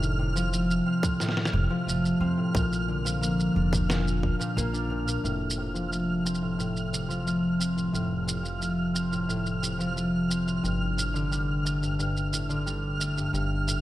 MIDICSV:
0, 0, Header, 1, 5, 480
1, 0, Start_track
1, 0, Tempo, 674157
1, 1813, Time_signature, 4, 2, 24, 8
1, 9833, End_track
2, 0, Start_track
2, 0, Title_t, "Synth texture"
2, 0, Program_c, 0, 99
2, 0, Note_on_c, 0, 89, 82
2, 3722, Note_off_c, 0, 89, 0
2, 3731, Note_on_c, 0, 89, 76
2, 9833, Note_off_c, 0, 89, 0
2, 9833, End_track
3, 0, Start_track
3, 0, Title_t, "Harp"
3, 0, Program_c, 1, 46
3, 0, Note_on_c, 1, 45, 96
3, 134, Note_on_c, 1, 48, 68
3, 169, Note_off_c, 1, 45, 0
3, 253, Note_on_c, 1, 53, 95
3, 374, Note_on_c, 1, 57, 66
3, 612, Note_on_c, 1, 60, 69
3, 734, Note_on_c, 1, 45, 70
3, 769, Note_off_c, 1, 48, 0
3, 846, Note_off_c, 1, 45, 0
3, 854, Note_on_c, 1, 45, 101
3, 1094, Note_on_c, 1, 48, 69
3, 1129, Note_off_c, 1, 45, 0
3, 1129, Note_off_c, 1, 53, 0
3, 1213, Note_on_c, 1, 53, 100
3, 1328, Note_off_c, 1, 57, 0
3, 1331, Note_on_c, 1, 57, 75
3, 1567, Note_off_c, 1, 60, 0
3, 1570, Note_on_c, 1, 60, 74
3, 1689, Note_on_c, 1, 45, 65
3, 1729, Note_off_c, 1, 48, 0
3, 1808, Note_on_c, 1, 46, 84
3, 1849, Note_off_c, 1, 45, 0
3, 1849, Note_off_c, 1, 53, 0
3, 1851, Note_off_c, 1, 57, 0
3, 2054, Note_on_c, 1, 50, 66
3, 2089, Note_off_c, 1, 46, 0
3, 2171, Note_on_c, 1, 53, 87
3, 2287, Note_on_c, 1, 58, 77
3, 2528, Note_on_c, 1, 62, 65
3, 2648, Note_on_c, 1, 46, 78
3, 2689, Note_off_c, 1, 50, 0
3, 2759, Note_off_c, 1, 46, 0
3, 2768, Note_on_c, 1, 46, 101
3, 3007, Note_off_c, 1, 58, 0
3, 3010, Note_on_c, 1, 58, 73
3, 3120, Note_off_c, 1, 46, 0
3, 3129, Note_on_c, 1, 46, 100
3, 3249, Note_off_c, 1, 58, 0
3, 3252, Note_on_c, 1, 58, 95
3, 3366, Note_off_c, 1, 62, 0
3, 3369, Note_on_c, 1, 62, 75
3, 3481, Note_off_c, 1, 46, 0
3, 3489, Note_on_c, 1, 46, 79
3, 3600, Note_off_c, 1, 46, 0
3, 3609, Note_on_c, 1, 46, 62
3, 3706, Note_off_c, 1, 60, 0
3, 3729, Note_on_c, 1, 45, 75
3, 3769, Note_off_c, 1, 46, 0
3, 3769, Note_off_c, 1, 53, 0
3, 3772, Note_off_c, 1, 58, 0
3, 3969, Note_on_c, 1, 48, 59
3, 4009, Note_off_c, 1, 45, 0
3, 4087, Note_on_c, 1, 53, 73
3, 4209, Note_on_c, 1, 57, 60
3, 4449, Note_on_c, 1, 60, 60
3, 4570, Note_on_c, 1, 45, 59
3, 4609, Note_off_c, 1, 48, 0
3, 4677, Note_off_c, 1, 45, 0
3, 4685, Note_on_c, 1, 45, 81
3, 4928, Note_on_c, 1, 48, 57
3, 4969, Note_off_c, 1, 45, 0
3, 4969, Note_off_c, 1, 53, 0
3, 5045, Note_on_c, 1, 53, 86
3, 5163, Note_off_c, 1, 57, 0
3, 5166, Note_on_c, 1, 57, 62
3, 5362, Note_off_c, 1, 62, 0
3, 5402, Note_off_c, 1, 60, 0
3, 5405, Note_on_c, 1, 60, 61
3, 5525, Note_on_c, 1, 45, 56
3, 5569, Note_off_c, 1, 48, 0
3, 5638, Note_off_c, 1, 45, 0
3, 5646, Note_on_c, 1, 45, 80
3, 5886, Note_on_c, 1, 48, 54
3, 5929, Note_off_c, 1, 45, 0
3, 5929, Note_off_c, 1, 53, 0
3, 6004, Note_on_c, 1, 53, 82
3, 6120, Note_off_c, 1, 57, 0
3, 6123, Note_on_c, 1, 57, 64
3, 6361, Note_off_c, 1, 60, 0
3, 6364, Note_on_c, 1, 60, 58
3, 6486, Note_on_c, 1, 45, 62
3, 6529, Note_off_c, 1, 48, 0
3, 6601, Note_off_c, 1, 45, 0
3, 6609, Note_on_c, 1, 45, 86
3, 6849, Note_on_c, 1, 48, 62
3, 6889, Note_off_c, 1, 45, 0
3, 6889, Note_off_c, 1, 53, 0
3, 6969, Note_on_c, 1, 53, 90
3, 7088, Note_off_c, 1, 57, 0
3, 7090, Note_on_c, 1, 57, 65
3, 7328, Note_off_c, 1, 60, 0
3, 7331, Note_on_c, 1, 60, 66
3, 7451, Note_on_c, 1, 45, 54
3, 7489, Note_off_c, 1, 48, 0
3, 7571, Note_on_c, 1, 43, 75
3, 7609, Note_off_c, 1, 45, 0
3, 7609, Note_off_c, 1, 53, 0
3, 7811, Note_on_c, 1, 45, 57
3, 7849, Note_off_c, 1, 43, 0
3, 7931, Note_on_c, 1, 50, 85
3, 7969, Note_off_c, 1, 45, 0
3, 8052, Note_on_c, 1, 55, 63
3, 8290, Note_off_c, 1, 57, 0
3, 8293, Note_on_c, 1, 57, 60
3, 8415, Note_on_c, 1, 43, 64
3, 8528, Note_off_c, 1, 43, 0
3, 8536, Note_on_c, 1, 43, 83
3, 8775, Note_on_c, 1, 45, 61
3, 8809, Note_off_c, 1, 43, 0
3, 8809, Note_off_c, 1, 50, 0
3, 8894, Note_on_c, 1, 50, 89
3, 8929, Note_off_c, 1, 45, 0
3, 8929, Note_off_c, 1, 55, 0
3, 9013, Note_on_c, 1, 55, 66
3, 9250, Note_off_c, 1, 57, 0
3, 9252, Note_on_c, 1, 57, 63
3, 9377, Note_on_c, 1, 43, 57
3, 9467, Note_off_c, 1, 60, 0
3, 9487, Note_off_c, 1, 43, 0
3, 9496, Note_on_c, 1, 43, 83
3, 9732, Note_on_c, 1, 45, 60
3, 9769, Note_off_c, 1, 43, 0
3, 9769, Note_off_c, 1, 50, 0
3, 9833, Note_off_c, 1, 45, 0
3, 9833, Note_off_c, 1, 55, 0
3, 9833, Note_off_c, 1, 57, 0
3, 9833, End_track
4, 0, Start_track
4, 0, Title_t, "Upright bass"
4, 0, Program_c, 2, 32
4, 0, Note_on_c, 2, 29, 84
4, 550, Note_off_c, 2, 29, 0
4, 1091, Note_on_c, 2, 29, 101
4, 1174, Note_off_c, 2, 29, 0
4, 1331, Note_on_c, 2, 29, 72
4, 1496, Note_off_c, 2, 29, 0
4, 1570, Note_on_c, 2, 41, 88
4, 1654, Note_off_c, 2, 41, 0
4, 1814, Note_on_c, 2, 34, 82
4, 2473, Note_off_c, 2, 34, 0
4, 2535, Note_on_c, 2, 29, 84
4, 3073, Note_off_c, 2, 29, 0
4, 3253, Note_on_c, 2, 34, 87
4, 3672, Note_off_c, 2, 34, 0
4, 3730, Note_on_c, 2, 29, 72
4, 5628, Note_off_c, 2, 29, 0
4, 5649, Note_on_c, 2, 29, 74
4, 7547, Note_off_c, 2, 29, 0
4, 7573, Note_on_c, 2, 31, 73
4, 9469, Note_off_c, 2, 31, 0
4, 9491, Note_on_c, 2, 31, 75
4, 9833, Note_off_c, 2, 31, 0
4, 9833, End_track
5, 0, Start_track
5, 0, Title_t, "Drums"
5, 19, Note_on_c, 9, 82, 31
5, 90, Note_off_c, 9, 82, 0
5, 259, Note_on_c, 9, 82, 58
5, 330, Note_off_c, 9, 82, 0
5, 379, Note_on_c, 9, 82, 50
5, 450, Note_off_c, 9, 82, 0
5, 501, Note_on_c, 9, 82, 31
5, 573, Note_off_c, 9, 82, 0
5, 734, Note_on_c, 9, 36, 98
5, 740, Note_on_c, 9, 82, 61
5, 805, Note_off_c, 9, 36, 0
5, 811, Note_off_c, 9, 82, 0
5, 855, Note_on_c, 9, 38, 34
5, 861, Note_on_c, 9, 82, 51
5, 916, Note_off_c, 9, 38, 0
5, 916, Note_on_c, 9, 38, 40
5, 932, Note_off_c, 9, 82, 0
5, 976, Note_off_c, 9, 38, 0
5, 976, Note_on_c, 9, 38, 46
5, 1035, Note_off_c, 9, 38, 0
5, 1035, Note_on_c, 9, 38, 57
5, 1041, Note_on_c, 9, 82, 30
5, 1107, Note_off_c, 9, 38, 0
5, 1113, Note_off_c, 9, 82, 0
5, 1343, Note_on_c, 9, 82, 61
5, 1414, Note_off_c, 9, 82, 0
5, 1461, Note_on_c, 9, 82, 30
5, 1532, Note_off_c, 9, 82, 0
5, 1814, Note_on_c, 9, 36, 109
5, 1822, Note_on_c, 9, 82, 51
5, 1885, Note_off_c, 9, 36, 0
5, 1893, Note_off_c, 9, 82, 0
5, 1940, Note_on_c, 9, 82, 30
5, 2011, Note_off_c, 9, 82, 0
5, 2180, Note_on_c, 9, 82, 61
5, 2251, Note_off_c, 9, 82, 0
5, 2299, Note_on_c, 9, 82, 52
5, 2370, Note_off_c, 9, 82, 0
5, 2419, Note_on_c, 9, 82, 31
5, 2490, Note_off_c, 9, 82, 0
5, 2654, Note_on_c, 9, 36, 92
5, 2661, Note_on_c, 9, 82, 66
5, 2725, Note_off_c, 9, 36, 0
5, 2733, Note_off_c, 9, 82, 0
5, 2775, Note_on_c, 9, 38, 72
5, 2781, Note_on_c, 9, 82, 50
5, 2846, Note_off_c, 9, 38, 0
5, 2852, Note_off_c, 9, 82, 0
5, 2901, Note_on_c, 9, 82, 31
5, 2972, Note_off_c, 9, 82, 0
5, 3014, Note_on_c, 9, 36, 54
5, 3085, Note_off_c, 9, 36, 0
5, 3139, Note_on_c, 9, 82, 59
5, 3210, Note_off_c, 9, 82, 0
5, 3259, Note_on_c, 9, 82, 55
5, 3330, Note_off_c, 9, 82, 0
5, 3376, Note_on_c, 9, 82, 31
5, 3448, Note_off_c, 9, 82, 0
5, 3617, Note_on_c, 9, 82, 58
5, 3688, Note_off_c, 9, 82, 0
5, 3738, Note_on_c, 9, 82, 33
5, 3809, Note_off_c, 9, 82, 0
5, 3918, Note_on_c, 9, 82, 63
5, 3989, Note_off_c, 9, 82, 0
5, 4097, Note_on_c, 9, 82, 26
5, 4168, Note_off_c, 9, 82, 0
5, 4218, Note_on_c, 9, 82, 36
5, 4289, Note_off_c, 9, 82, 0
5, 4456, Note_on_c, 9, 82, 60
5, 4517, Note_off_c, 9, 82, 0
5, 4517, Note_on_c, 9, 82, 26
5, 4589, Note_off_c, 9, 82, 0
5, 4697, Note_on_c, 9, 82, 37
5, 4768, Note_off_c, 9, 82, 0
5, 4816, Note_on_c, 9, 82, 23
5, 4888, Note_off_c, 9, 82, 0
5, 4938, Note_on_c, 9, 82, 64
5, 5010, Note_off_c, 9, 82, 0
5, 5058, Note_on_c, 9, 82, 27
5, 5129, Note_off_c, 9, 82, 0
5, 5177, Note_on_c, 9, 82, 35
5, 5248, Note_off_c, 9, 82, 0
5, 5416, Note_on_c, 9, 82, 63
5, 5488, Note_off_c, 9, 82, 0
5, 5537, Note_on_c, 9, 82, 27
5, 5608, Note_off_c, 9, 82, 0
5, 5657, Note_on_c, 9, 82, 38
5, 5728, Note_off_c, 9, 82, 0
5, 5896, Note_on_c, 9, 82, 74
5, 5968, Note_off_c, 9, 82, 0
5, 6017, Note_on_c, 9, 82, 27
5, 6089, Note_off_c, 9, 82, 0
5, 6136, Note_on_c, 9, 82, 40
5, 6207, Note_off_c, 9, 82, 0
5, 6374, Note_on_c, 9, 82, 67
5, 6446, Note_off_c, 9, 82, 0
5, 6497, Note_on_c, 9, 82, 26
5, 6568, Note_off_c, 9, 82, 0
5, 6619, Note_on_c, 9, 82, 37
5, 6690, Note_off_c, 9, 82, 0
5, 6737, Note_on_c, 9, 82, 26
5, 6808, Note_off_c, 9, 82, 0
5, 6859, Note_on_c, 9, 82, 70
5, 6930, Note_off_c, 9, 82, 0
5, 6980, Note_on_c, 9, 82, 29
5, 7051, Note_off_c, 9, 82, 0
5, 7099, Note_on_c, 9, 82, 37
5, 7171, Note_off_c, 9, 82, 0
5, 7340, Note_on_c, 9, 82, 65
5, 7411, Note_off_c, 9, 82, 0
5, 7460, Note_on_c, 9, 82, 27
5, 7531, Note_off_c, 9, 82, 0
5, 7580, Note_on_c, 9, 82, 38
5, 7651, Note_off_c, 9, 82, 0
5, 7821, Note_on_c, 9, 82, 74
5, 7892, Note_off_c, 9, 82, 0
5, 7942, Note_on_c, 9, 82, 27
5, 8013, Note_off_c, 9, 82, 0
5, 8061, Note_on_c, 9, 82, 39
5, 8133, Note_off_c, 9, 82, 0
5, 8301, Note_on_c, 9, 82, 65
5, 8373, Note_off_c, 9, 82, 0
5, 8422, Note_on_c, 9, 82, 29
5, 8493, Note_off_c, 9, 82, 0
5, 8541, Note_on_c, 9, 82, 36
5, 8612, Note_off_c, 9, 82, 0
5, 8663, Note_on_c, 9, 82, 25
5, 8734, Note_off_c, 9, 82, 0
5, 8780, Note_on_c, 9, 82, 68
5, 8851, Note_off_c, 9, 82, 0
5, 8899, Note_on_c, 9, 82, 27
5, 8971, Note_off_c, 9, 82, 0
5, 9021, Note_on_c, 9, 82, 41
5, 9092, Note_off_c, 9, 82, 0
5, 9261, Note_on_c, 9, 82, 66
5, 9332, Note_off_c, 9, 82, 0
5, 9381, Note_on_c, 9, 82, 31
5, 9452, Note_off_c, 9, 82, 0
5, 9501, Note_on_c, 9, 82, 36
5, 9572, Note_off_c, 9, 82, 0
5, 9740, Note_on_c, 9, 82, 71
5, 9811, Note_off_c, 9, 82, 0
5, 9833, End_track
0, 0, End_of_file